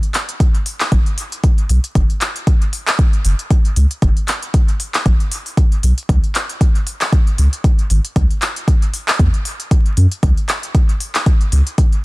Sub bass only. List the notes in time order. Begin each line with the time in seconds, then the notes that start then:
0.92 A1
1.69 B1
1.95 F#1
3.25 F#1
3.76 C#2
4.02 F#1
5.06 A1
5.83 B1
6.09 C#2
7.38 C#2
7.90 G#1
8.16 C#2
9.19 E2
9.97 F#2
10.23 C#2
11.52 C#2